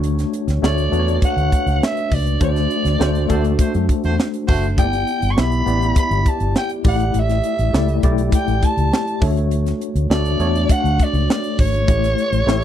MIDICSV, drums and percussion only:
0, 0, Header, 1, 2, 480
1, 0, Start_track
1, 0, Key_signature, 2, "major"
1, 0, Tempo, 592300
1, 30, Time_signature, 4, 2, 24, 8
1, 10246, End_track
2, 0, Start_track
2, 0, Title_t, "Drums"
2, 29, Note_on_c, 9, 42, 86
2, 110, Note_off_c, 9, 42, 0
2, 152, Note_on_c, 9, 42, 59
2, 155, Note_on_c, 9, 38, 34
2, 233, Note_off_c, 9, 42, 0
2, 236, Note_off_c, 9, 38, 0
2, 271, Note_on_c, 9, 42, 59
2, 352, Note_off_c, 9, 42, 0
2, 389, Note_on_c, 9, 42, 54
2, 398, Note_on_c, 9, 38, 39
2, 470, Note_off_c, 9, 42, 0
2, 479, Note_off_c, 9, 38, 0
2, 519, Note_on_c, 9, 38, 112
2, 600, Note_off_c, 9, 38, 0
2, 631, Note_on_c, 9, 42, 57
2, 712, Note_off_c, 9, 42, 0
2, 754, Note_on_c, 9, 42, 63
2, 835, Note_off_c, 9, 42, 0
2, 876, Note_on_c, 9, 42, 58
2, 957, Note_off_c, 9, 42, 0
2, 990, Note_on_c, 9, 36, 91
2, 994, Note_on_c, 9, 42, 92
2, 1071, Note_off_c, 9, 36, 0
2, 1075, Note_off_c, 9, 42, 0
2, 1117, Note_on_c, 9, 42, 45
2, 1198, Note_off_c, 9, 42, 0
2, 1235, Note_on_c, 9, 36, 73
2, 1238, Note_on_c, 9, 42, 64
2, 1316, Note_off_c, 9, 36, 0
2, 1319, Note_off_c, 9, 42, 0
2, 1354, Note_on_c, 9, 42, 43
2, 1435, Note_off_c, 9, 42, 0
2, 1486, Note_on_c, 9, 38, 113
2, 1567, Note_off_c, 9, 38, 0
2, 1595, Note_on_c, 9, 42, 46
2, 1676, Note_off_c, 9, 42, 0
2, 1715, Note_on_c, 9, 36, 85
2, 1715, Note_on_c, 9, 46, 86
2, 1796, Note_off_c, 9, 36, 0
2, 1796, Note_off_c, 9, 46, 0
2, 1835, Note_on_c, 9, 42, 45
2, 1917, Note_off_c, 9, 42, 0
2, 1949, Note_on_c, 9, 42, 78
2, 1952, Note_on_c, 9, 36, 98
2, 2030, Note_off_c, 9, 42, 0
2, 2033, Note_off_c, 9, 36, 0
2, 2076, Note_on_c, 9, 42, 58
2, 2079, Note_on_c, 9, 38, 36
2, 2157, Note_off_c, 9, 42, 0
2, 2160, Note_off_c, 9, 38, 0
2, 2192, Note_on_c, 9, 42, 64
2, 2273, Note_off_c, 9, 42, 0
2, 2311, Note_on_c, 9, 42, 57
2, 2320, Note_on_c, 9, 38, 42
2, 2392, Note_off_c, 9, 42, 0
2, 2401, Note_off_c, 9, 38, 0
2, 2439, Note_on_c, 9, 38, 102
2, 2520, Note_off_c, 9, 38, 0
2, 2554, Note_on_c, 9, 42, 52
2, 2635, Note_off_c, 9, 42, 0
2, 2669, Note_on_c, 9, 42, 63
2, 2673, Note_on_c, 9, 36, 79
2, 2750, Note_off_c, 9, 42, 0
2, 2754, Note_off_c, 9, 36, 0
2, 2791, Note_on_c, 9, 42, 51
2, 2872, Note_off_c, 9, 42, 0
2, 2908, Note_on_c, 9, 36, 93
2, 2910, Note_on_c, 9, 42, 102
2, 2989, Note_off_c, 9, 36, 0
2, 2991, Note_off_c, 9, 42, 0
2, 3034, Note_on_c, 9, 42, 49
2, 3115, Note_off_c, 9, 42, 0
2, 3153, Note_on_c, 9, 36, 76
2, 3153, Note_on_c, 9, 42, 72
2, 3234, Note_off_c, 9, 36, 0
2, 3234, Note_off_c, 9, 42, 0
2, 3271, Note_on_c, 9, 42, 43
2, 3352, Note_off_c, 9, 42, 0
2, 3401, Note_on_c, 9, 38, 94
2, 3482, Note_off_c, 9, 38, 0
2, 3513, Note_on_c, 9, 42, 51
2, 3595, Note_off_c, 9, 42, 0
2, 3633, Note_on_c, 9, 46, 86
2, 3635, Note_on_c, 9, 36, 94
2, 3714, Note_off_c, 9, 46, 0
2, 3716, Note_off_c, 9, 36, 0
2, 3759, Note_on_c, 9, 42, 46
2, 3840, Note_off_c, 9, 42, 0
2, 3872, Note_on_c, 9, 42, 82
2, 3873, Note_on_c, 9, 36, 102
2, 3953, Note_off_c, 9, 42, 0
2, 3954, Note_off_c, 9, 36, 0
2, 3995, Note_on_c, 9, 42, 54
2, 4076, Note_off_c, 9, 42, 0
2, 4112, Note_on_c, 9, 42, 53
2, 4193, Note_off_c, 9, 42, 0
2, 4232, Note_on_c, 9, 42, 57
2, 4313, Note_off_c, 9, 42, 0
2, 4358, Note_on_c, 9, 38, 113
2, 4439, Note_off_c, 9, 38, 0
2, 4472, Note_on_c, 9, 42, 49
2, 4553, Note_off_c, 9, 42, 0
2, 4596, Note_on_c, 9, 42, 66
2, 4677, Note_off_c, 9, 42, 0
2, 4718, Note_on_c, 9, 42, 55
2, 4799, Note_off_c, 9, 42, 0
2, 4830, Note_on_c, 9, 36, 103
2, 4833, Note_on_c, 9, 42, 103
2, 4912, Note_off_c, 9, 36, 0
2, 4914, Note_off_c, 9, 42, 0
2, 4953, Note_on_c, 9, 42, 47
2, 5034, Note_off_c, 9, 42, 0
2, 5072, Note_on_c, 9, 36, 77
2, 5072, Note_on_c, 9, 42, 65
2, 5153, Note_off_c, 9, 36, 0
2, 5153, Note_off_c, 9, 42, 0
2, 5188, Note_on_c, 9, 42, 41
2, 5269, Note_off_c, 9, 42, 0
2, 5314, Note_on_c, 9, 38, 106
2, 5395, Note_off_c, 9, 38, 0
2, 5426, Note_on_c, 9, 42, 50
2, 5507, Note_off_c, 9, 42, 0
2, 5545, Note_on_c, 9, 46, 90
2, 5549, Note_on_c, 9, 36, 108
2, 5626, Note_off_c, 9, 46, 0
2, 5630, Note_off_c, 9, 36, 0
2, 5669, Note_on_c, 9, 42, 44
2, 5750, Note_off_c, 9, 42, 0
2, 5787, Note_on_c, 9, 42, 88
2, 5869, Note_off_c, 9, 42, 0
2, 5911, Note_on_c, 9, 42, 58
2, 5914, Note_on_c, 9, 38, 35
2, 5992, Note_off_c, 9, 42, 0
2, 5995, Note_off_c, 9, 38, 0
2, 6026, Note_on_c, 9, 42, 62
2, 6107, Note_off_c, 9, 42, 0
2, 6149, Note_on_c, 9, 42, 54
2, 6230, Note_off_c, 9, 42, 0
2, 6276, Note_on_c, 9, 38, 108
2, 6357, Note_off_c, 9, 38, 0
2, 6388, Note_on_c, 9, 42, 58
2, 6469, Note_off_c, 9, 42, 0
2, 6507, Note_on_c, 9, 42, 61
2, 6510, Note_on_c, 9, 36, 88
2, 6588, Note_off_c, 9, 42, 0
2, 6591, Note_off_c, 9, 36, 0
2, 6630, Note_on_c, 9, 42, 59
2, 6711, Note_off_c, 9, 42, 0
2, 6745, Note_on_c, 9, 36, 96
2, 6747, Note_on_c, 9, 42, 99
2, 6826, Note_off_c, 9, 36, 0
2, 6828, Note_off_c, 9, 42, 0
2, 6871, Note_on_c, 9, 42, 49
2, 6952, Note_off_c, 9, 42, 0
2, 6991, Note_on_c, 9, 36, 76
2, 6993, Note_on_c, 9, 42, 75
2, 7072, Note_off_c, 9, 36, 0
2, 7074, Note_off_c, 9, 42, 0
2, 7113, Note_on_c, 9, 42, 47
2, 7194, Note_off_c, 9, 42, 0
2, 7240, Note_on_c, 9, 38, 116
2, 7321, Note_off_c, 9, 38, 0
2, 7354, Note_on_c, 9, 42, 47
2, 7435, Note_off_c, 9, 42, 0
2, 7470, Note_on_c, 9, 36, 107
2, 7470, Note_on_c, 9, 46, 86
2, 7551, Note_off_c, 9, 36, 0
2, 7551, Note_off_c, 9, 46, 0
2, 7595, Note_on_c, 9, 42, 49
2, 7676, Note_off_c, 9, 42, 0
2, 7709, Note_on_c, 9, 42, 81
2, 7791, Note_off_c, 9, 42, 0
2, 7832, Note_on_c, 9, 42, 57
2, 7835, Note_on_c, 9, 38, 36
2, 7913, Note_off_c, 9, 42, 0
2, 7916, Note_off_c, 9, 38, 0
2, 7953, Note_on_c, 9, 42, 61
2, 8034, Note_off_c, 9, 42, 0
2, 8069, Note_on_c, 9, 42, 55
2, 8150, Note_off_c, 9, 42, 0
2, 8195, Note_on_c, 9, 38, 115
2, 8276, Note_off_c, 9, 38, 0
2, 8309, Note_on_c, 9, 42, 56
2, 8390, Note_off_c, 9, 42, 0
2, 8427, Note_on_c, 9, 42, 64
2, 8508, Note_off_c, 9, 42, 0
2, 8552, Note_on_c, 9, 42, 58
2, 8634, Note_off_c, 9, 42, 0
2, 8667, Note_on_c, 9, 36, 90
2, 8670, Note_on_c, 9, 42, 100
2, 8748, Note_off_c, 9, 36, 0
2, 8751, Note_off_c, 9, 42, 0
2, 8796, Note_on_c, 9, 42, 44
2, 8877, Note_off_c, 9, 42, 0
2, 8911, Note_on_c, 9, 36, 78
2, 8913, Note_on_c, 9, 42, 71
2, 8992, Note_off_c, 9, 36, 0
2, 8994, Note_off_c, 9, 42, 0
2, 9028, Note_on_c, 9, 42, 41
2, 9109, Note_off_c, 9, 42, 0
2, 9159, Note_on_c, 9, 38, 113
2, 9240, Note_off_c, 9, 38, 0
2, 9267, Note_on_c, 9, 42, 52
2, 9348, Note_off_c, 9, 42, 0
2, 9390, Note_on_c, 9, 46, 93
2, 9391, Note_on_c, 9, 36, 94
2, 9471, Note_off_c, 9, 46, 0
2, 9472, Note_off_c, 9, 36, 0
2, 9515, Note_on_c, 9, 42, 45
2, 9596, Note_off_c, 9, 42, 0
2, 9629, Note_on_c, 9, 36, 110
2, 9630, Note_on_c, 9, 42, 74
2, 9710, Note_off_c, 9, 36, 0
2, 9711, Note_off_c, 9, 42, 0
2, 9757, Note_on_c, 9, 42, 59
2, 9760, Note_on_c, 9, 38, 35
2, 9838, Note_off_c, 9, 42, 0
2, 9841, Note_off_c, 9, 38, 0
2, 9872, Note_on_c, 9, 42, 64
2, 9953, Note_off_c, 9, 42, 0
2, 9989, Note_on_c, 9, 42, 58
2, 10070, Note_off_c, 9, 42, 0
2, 10118, Note_on_c, 9, 38, 107
2, 10199, Note_off_c, 9, 38, 0
2, 10246, End_track
0, 0, End_of_file